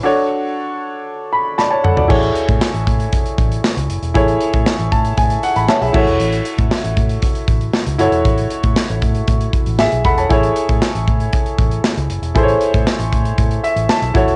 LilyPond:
<<
  \new Staff \with { instrumentName = "Grand piano" } { \time 4/4 \key a \major \tempo 4 = 117 << { r2 r8 b''8 <d'' a'' b''>16 <cis'' a''>16 <a' fis''>16 <fis' d''>16~ | <fis' d''>16 r2. r8. | r4. a''8 gis''8 fis''16 b''16 <cis'' e'' a''>16 <gis' e''>16 e''8 | r1 |
r2. <gis' e''>8 <a' fis'' b''>16 <cis'' a''>16~ | <cis'' a''>16 r2. r8. | r2 r8 e''8 a''4 | } \\ { <d' fis' a' cis''>1 | <e' gis' a' cis''>1 | <e' gis' a' cis''>2.~ <e' gis' a' cis''>8 <e' fis' a' cis''>8~ | <e' fis' a' cis''>2.~ <e' fis' a' cis''>8 <e' fis' a' cis''>8~ |
<e' fis' a' cis''>2.~ <e' fis' a' cis''>8 r8 | <e' gis' a' cis''>1 | <e' gis' a' c'' cis''>2.~ <e' gis' a' c'' cis''>8 <e' fis' a' cis''>8 | } >> }
  \new Staff \with { instrumentName = "Fingered electric bass" } { \clef bass \time 4/4 \key a \major r1 | a,,8 r16 a,16 r16 a,,16 a,8 r8 a,,8 r16 cis,16 fis,,16 e,,16 | a,,8 r16 a,16 r16 a,,16 a,8 a,8 r16 a,,16 r16 b,,16 a,,16 e,,16 | a,,8 r16 a,16 r16 a,,16 a,8 r8 a,,8 r16 cis,16 fis,,16 e,,16 |
a,,8 r16 a,16 r16 a,,16 a,8 a,8 r16 a,,8 b,,16 e,,8 | a,,8 r16 a,16 r16 a,,16 a,8 r8 a,,8 r16 cis,16 fis,,16 e,,16 | a,,8 r16 a,16 r16 a,,16 a,8 a,8 r16 a,,16 r16 b,,16 a,,16 e,,16 | }
  \new DrumStaff \with { instrumentName = "Drums" } \drummode { \time 4/4 r4 r4 r4 sn8 toml16 tomfh16 | <cymc bd>16 hh16 hh16 <hh bd>16 <sn tamb>16 hh16 <hh bd>16 hh16 <hh bd>16 hh16 <hh bd>16 hh16 <sn tamb>16 hh16 hh16 hh16 | <hh bd>16 hh16 hh16 <hh bd>16 <sn tamb>16 hh16 <hh bd>16 hh16 <hh bd>16 hh16 hh16 hh16 <sn tamb>16 hh16 <cymc bd>16 hh16 | hh16 hh16 hh16 <hh bd>16 <sn tamb>16 hh16 <hh bd>16 hh16 <hh bd>16 hh16 <hh bd>16 hh16 <sn tamb>16 hh16 hh16 hh16 |
<hh bd>16 hh16 hh16 <hh bd>16 <sn tamb>16 hh16 <hh bd>16 hh16 <hh bd>16 hh16 <hh bd>16 hh16 <sn tamb>16 hh16 <hh bd>16 hh16 | <hh bd>16 hh16 hh16 <hh bd>16 <sn tamb>16 hh16 <hh bd>16 hh16 <hh bd>16 hh16 <hh bd>16 hh16 <sn tamb>16 hh16 hh16 hh16 | <hh bd>16 hh16 hh16 <hh bd>16 <sn tamb>16 hh16 <hh bd>16 hh16 <hh bd>16 hh16 hh16 hh16 <sn tamb>16 hh16 <hh bd>16 hh16 | }
>>